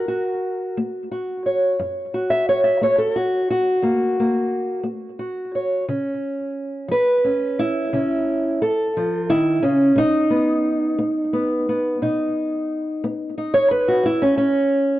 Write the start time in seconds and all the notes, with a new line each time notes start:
Already playing: F#2 A#4
0.08 F#4
0.77 A#3
1.11 F#4
1.46 C#5
1.79 F#2
2.14 F#4
2.30 E5
2.49 C#5
2.64 E5
2.81 A#3 C#5
2.98 A4
3.16 F#4
3.50 F#4
3.82 F#2 A#3
4.20 A#3
4.83 A#3
5.19 F#4
5.55 C#5
5.88 C#3 C#4
6.88 F3 B4
7.25 C#4
7.59 E4
7.93 C#3 C#4
8.62 A4
8.97 F3
9.29 D#3 E4
9.62 C#3 C#4
9.96 B2 D#4
10.30 B3
10.99 B3
11.33 B3
11.69 B3
12.02 B2 D#4
13.04 B3
13.38 D#4
13.54 C#5
13.71 B4
13.88 F#4
14.03 F#2 E4
14.22 C#4
14.37 C#4